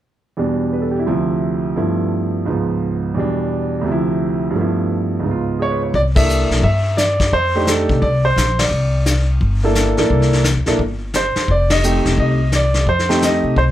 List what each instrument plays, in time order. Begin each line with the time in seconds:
0.37 grand piano E2 B2 G3 D4
0.73 grand piano B4
0.82 grand piano A4
0.91 grand piano G4
0.99 grand piano E4
1.06 grand piano D2 C3 F3 E4
1.76 grand piano G2 F3 A3 B3 E4
2.45 grand piano C#2 G#2 F3
2.50 grand piano B3
3.14 grand piano E2 B2 G3
3.19 grand piano D4
3.81 grand piano D2 C3
3.88 grand piano F3 E4
4.50 grand piano G2 F3
4.55 grand piano A3 B3
4.61 grand piano E4
5.20 grand piano C#2 G#2
5.27 grand piano B3 F4
5.59 grand piano G#4 C#5
5.71 grand piano B4
5.83 grand piano C#5
5.94 upright bass C2, grand piano D5, brush sweep, kick
6.15 grand piano A#3 D4 E4 A4 E5, kick, ride
6.29 hi-hat pedal
6.50 upright bass B1, snare
6.63 upright bass G2, grand piano E5, brush sweep, kick
6.97 grand piano D5, snare, hi-hat pedal
7.20 kick, snare
7.32 upright bass F2, grand piano C5, brush sweep, kick
7.55 grand piano A3 D4 D#4 G4
7.67 grand piano A4, snare, hi-hat pedal
7.89 upright bass C3, kick
8.02 upright bass C2, grand piano D5, brush sweep, kick
8.25 grand piano C5
8.36 upright bass A#1, snare, hi-hat pedal
8.59 grand piano D5, snare, ride
8.71 upright bass C2, brush sweep
9.06 snare, hi-hat pedal
9.41 upright bass G1, brush sweep, kick
9.64 grand piano A#3 D4 E4 A4
9.75 snare, hi-hat pedal
9.97 upright bass A#1, grand piano A#3 D4 E4 A4, snare
10.10 upright bass C2, brush sweep, kick
10.22 snare
10.33 snare
10.44 snare, hi-hat pedal
10.56 upright bass D2
10.66 upright bass A#1, grand piano A#3 D4 E4 A4, snare
10.78 upright bass G1, brush sweep, kick
11.14 grand piano C5, snare, hi-hat pedal
11.36 muted upright bass stroke, snare
11.47 upright bass F1, grand piano D5, brush sweep, kick
11.70 grand piano D#5, snare, ride
11.83 grand piano A3 C4 D#4 G4, hi-hat pedal
12.05 upright bass E1, snare
12.17 upright bass C2, grand piano D#5, brush sweep, kick
12.52 grand piano D5, snare, hi-hat pedal
12.74 snare
12.86 upright bass F2, grand piano C5, brush sweep, kick
12.99 snare
13.09 grand piano A3 C4 D#4 G4, snare
13.22 grand piano D#5, snare, hi-hat pedal
13.44 upright bass C3
13.56 upright bass C2, grand piano C5, brush sweep, kick